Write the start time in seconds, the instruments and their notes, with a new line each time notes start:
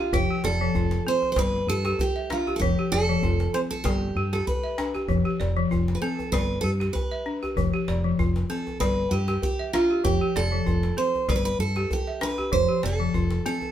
Already playing: balafon D4 E5, steel-string acoustic guitar F4
0.00 balafon G4
0.12 fingered electric bass F1, balafon F3, steel-string acoustic guitar G4, djembe bass
0.30 balafon G4, djembe slap
0.44 fingered electric bass F1, steel-string acoustic guitar A4, balafon D5, djembe slap
0.61 balafon F3
0.74 fingered electric bass F1, balafon F4, djembe slap, djembe bass
0.91 djembe slap
1.07 balafon C4, steel-string acoustic guitar C5
1.22 djembe tone
1.32 fingered electric bass G1, steel-string acoustic guitar C5
1.36 balafon G3, steel-string acoustic guitar B4, djembe slap, djembe bass
1.67 fingered electric bass G2, balafon G4, steel-string acoustic guitar A4, djembe slap
1.85 balafon G4, djembe slap
1.99 steel-string acoustic guitar G4, djembe bass
2.16 balafon E5
2.30 balafon D4, steel-string acoustic guitar F4, djembe slap
2.47 balafon G4, djembe slap, djembe tone
2.56 fingered electric bass F1, steel-string acoustic guitar G4 A4
2.61 balafon F3, djembe bass
2.78 balafon G4, djembe slap
2.92 fingered electric bass F1, steel-string acoustic guitar A4, balafon D5, djembe slap
3.09 balafon F3
3.22 fingered electric bass F1, balafon F4, djembe slap, djembe bass
3.40 djembe slap
3.54 balafon C4, steel-string acoustic guitar C5
3.71 steel-string acoustic guitar A4, djembe tone
3.84 fingered electric bass G1, balafon G3, steel-string acoustic guitar G4, djembe slap, djembe bass
4.15 fingered electric bass G2, balafon G4, djembe slap
4.33 balafon G4, steel-string acoustic guitar A4, djembe slap
4.47 steel-string acoustic guitar B4, djembe bass
4.64 balafon E5
4.78 balafon D4, djembe slap
4.95 balafon G4, djembe slap, djembe tone
5.08 fingered electric bass F1, balafon F3, djembe slap, djembe bass
5.25 balafon G4, djembe slap
5.40 fingered electric bass F1, balafon D5, djembe slap
5.57 balafon F3
5.70 fingered electric bass F1, balafon F4, djembe slap, djembe bass
5.88 djembe slap
5.95 steel-string acoustic guitar B4
6.02 balafon C4, steel-string acoustic guitar A4
6.19 djembe tone
6.32 fingered electric bass G1, balafon G3, steel-string acoustic guitar B4, djembe slap, djembe bass
6.51 djembe slap
6.61 fingered electric bass G2, balafon G4, steel-string acoustic guitar A4
6.65 djembe slap
6.80 balafon G4, djembe slap
6.93 steel-string acoustic guitar B4, djembe slap, djembe bass
7.12 balafon E5
7.26 balafon D4
7.43 balafon G4, djembe tone
7.56 fingered electric bass F1, balafon F3, djembe bass
7.73 balafon G4, djembe slap
7.87 fingered electric bass F1, balafon D5, djembe slap
8.04 balafon F3
8.18 fingered electric bass F1, balafon F4, djembe slap, djembe bass
8.36 djembe slap
8.50 balafon C4, steel-string acoustic guitar A4
8.67 djembe tone
8.80 fingered electric bass G1, balafon G3, steel-string acoustic guitar B4, djembe slap, djembe bass
9.11 fingered electric bass G2, steel-string acoustic guitar G4, balafon G4, djembe slap
9.28 balafon G4, djembe slap
9.42 steel-string acoustic guitar G4, djembe bass
9.59 balafon E5
9.73 balafon D4, steel-string acoustic guitar F4, djembe slap
9.90 balafon G4, djembe slap
10.04 fingered electric bass F1, balafon F3, steel-string acoustic guitar G4, djembe bass
10.21 balafon G4, djembe slap
10.35 fingered electric bass F1, steel-string acoustic guitar A4, balafon D5, djembe slap
10.52 balafon F3
10.66 fingered electric bass F1, balafon F4, djembe slap, djembe bass
10.83 djembe slap
10.97 balafon C4, steel-string acoustic guitar C5
11.15 djembe tone
11.28 fingered electric bass G1, balafon G3, steel-string acoustic guitar B4, djembe slap, djembe bass
11.36 steel-string acoustic guitar B4
11.45 steel-string acoustic guitar B4
11.59 fingered electric bass G2, steel-string acoustic guitar A4, djembe slap
11.76 balafon G4, djembe slap
11.91 steel-string acoustic guitar G4, djembe bass
12.07 balafon E5
12.21 balafon D4, steel-string acoustic guitar B4, djembe slap
12.38 balafon G4, djembe slap, djembe tone
12.52 fingered electric bass F1, balafon F3, steel-string acoustic guitar C5, djembe bass
12.68 balafon G4, djembe slap
12.83 fingered electric bass F1, steel-string acoustic guitar A4, balafon D5, djembe slap
13.00 balafon F3
13.14 fingered electric bass F1, balafon F4, djembe slap, djembe bass
13.31 djembe slap
13.46 balafon C4, steel-string acoustic guitar A4
13.61 djembe tone